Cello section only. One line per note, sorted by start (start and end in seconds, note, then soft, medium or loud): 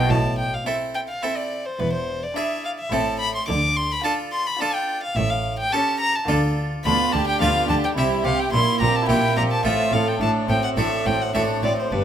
0.09 0.54 A2 medium
1.79 2.24 E2 medium
2.91 3.36 A2 soft
3.49 3.93 D3 medium
5.16 5.61 A2 medium
6.29 6.73 D3 medium
6.85 6.93 D3 medium
7.13 7.21 D3 medium
7.41 7.49 D3 medium
7.69 7.77 D3 medium
7.97 8.05 C3 medium
8.25 8.33 C3 medium
8.53 8.61 A#2 medium
8.81 8.89 A#2 soft
9.09 9.17 A#2 soft
9.37 9.45 A#2 soft
9.65 9.73 A2 medium
9.93 10.01 A2 medium
10.21 10.29 A2 medium
10.49 10.57 A2 soft
10.77 10.85 A2 soft
11.06 11.14 A2 soft
11.34 11.42 A2 soft
11.62 11.70 A2 soft
11.91 11.99 G2 medium